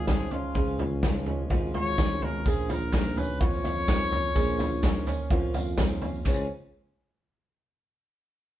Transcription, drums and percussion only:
0.07 kick loud
0.07 snare loud
0.07 floor tom medium
0.31 floor tom medium
0.55 kick loud
0.55 floor tom medium
0.79 floor tom medium
1.03 kick loud
1.03 snare loud
1.03 floor tom medium
1.26 floor tom medium
1.50 kick loud
1.50 floor tom medium
1.74 floor tom medium
1.98 kick loud
1.98 snare loud
1.98 floor tom medium
2.22 floor tom medium
2.45 kick loud
2.45 floor tom medium
2.45 tambourine medium
2.69 floor tom medium
2.69 tambourine medium
2.93 kick loud
2.93 snare loud
2.93 clap medium
2.93 floor tom medium
2.93 tambourine medium
3.05 tambourine soft
3.17 floor tom medium
3.17 tambourine medium
3.41 kick loud
3.41 floor tom medium
3.53 tambourine soft
3.65 floor tom medium
3.65 tambourine medium
3.77 tambourine soft
3.88 kick loud
3.88 snare loud
3.88 clap medium
3.88 floor tom medium
3.88 tambourine loud
4.12 floor tom medium
4.12 tambourine soft
4.35 kick loud
4.35 floor tom medium
4.35 tambourine medium
4.59 floor tom medium
4.59 tambourine medium
4.71 tambourine soft
4.82 kick loud
4.82 snare loud
4.82 clap medium
4.82 floor tom medium
4.82 tambourine medium
5.06 clap medium
5.06 floor tom medium
5.06 tambourine medium
5.30 kick loud
5.30 floor tom loud
5.54 floor tom medium
5.54 tambourine medium
5.66 tambourine soft
5.78 kick loud
5.78 snare loud
5.78 clap medium
5.78 floor tom medium
5.78 tambourine loud
6.02 floor tom medium
6.02 tambourine soft
6.14 tambourine soft
6.25 kick loud
6.25 clap medium
6.25 crash medium
6.25 tambourine medium

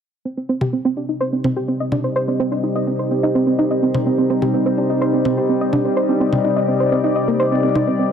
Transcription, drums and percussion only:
0.61 mid tom medium
1.44 mid tom medium
1.92 mid tom medium
3.94 mid tom medium
4.42 mid tom medium
5.25 mid tom medium
5.73 mid tom medium
6.33 mid tom medium
7.75 mid tom medium

